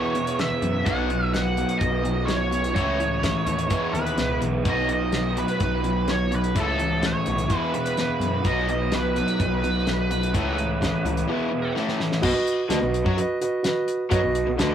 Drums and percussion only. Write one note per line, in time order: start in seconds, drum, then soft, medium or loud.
0.15 closed hi-hat medium
0.27 closed hi-hat medium
0.39 snare medium
0.39 closed hi-hat medium
0.62 closed hi-hat medium
0.86 kick loud
0.86 closed hi-hat medium
1.10 closed hi-hat soft
1.34 snare loud
1.34 closed hi-hat medium
1.57 closed hi-hat medium
1.69 closed hi-hat medium
1.81 kick loud
1.81 closed hi-hat medium
2.05 closed hi-hat medium
2.28 snare loud
2.28 closed hi-hat medium
2.52 closed hi-hat medium
2.64 closed hi-hat medium
2.76 kick loud
2.76 closed hi-hat medium
3.00 closed hi-hat medium
3.23 kick medium
3.23 snare loud
3.23 closed hi-hat medium
3.47 closed hi-hat medium
3.59 closed hi-hat medium
3.70 kick loud
3.70 closed hi-hat medium
3.95 closed hi-hat medium
4.06 closed hi-hat medium
4.18 snare medium
4.18 closed hi-hat medium
4.42 closed hi-hat medium
4.65 kick loud
4.65 closed hi-hat medium
4.89 closed hi-hat medium
5.12 snare loud
5.12 closed hi-hat medium
5.37 closed hi-hat medium
5.48 closed hi-hat medium
5.60 kick loud
5.60 closed hi-hat medium
5.84 closed hi-hat medium
6.08 snare loud
6.08 closed hi-hat soft
6.32 closed hi-hat medium
6.44 closed hi-hat medium
6.56 kick loud
6.56 closed hi-hat medium
6.79 closed hi-hat medium
7.03 snare loud
7.03 closed hi-hat medium
7.26 closed hi-hat medium
7.38 closed hi-hat medium
7.50 kick loud
7.50 closed hi-hat medium
7.74 closed hi-hat medium
7.86 closed hi-hat medium
7.97 snare medium
7.97 closed hi-hat medium
8.21 closed hi-hat medium
8.45 kick loud
8.45 closed hi-hat medium
8.69 closed hi-hat medium
8.92 snare loud
8.92 closed hi-hat medium
9.16 closed hi-hat medium
9.28 closed hi-hat medium
9.40 kick loud
9.40 closed hi-hat medium
9.64 closed hi-hat medium
9.87 snare medium
9.87 closed hi-hat medium
10.11 closed hi-hat medium
10.23 closed hi-hat medium
10.34 kick loud
10.34 closed hi-hat medium
10.58 closed hi-hat medium
10.82 kick medium
10.82 snare loud
10.82 closed hi-hat medium
11.06 closed hi-hat medium
11.17 closed hi-hat medium
11.77 snare medium
11.88 snare medium
12.00 snare medium
12.12 snare medium
12.23 kick loud
12.23 crash loud
12.47 closed hi-hat medium
12.70 snare loud
12.70 closed hi-hat loud
12.94 closed hi-hat medium
13.06 kick loud
13.18 closed hi-hat medium
13.42 closed hi-hat medium
13.64 snare loud
13.64 closed hi-hat medium
13.88 closed hi-hat medium
14.11 kick loud
14.11 closed hi-hat medium
14.35 closed hi-hat medium
14.59 snare loud
14.59 closed hi-hat loud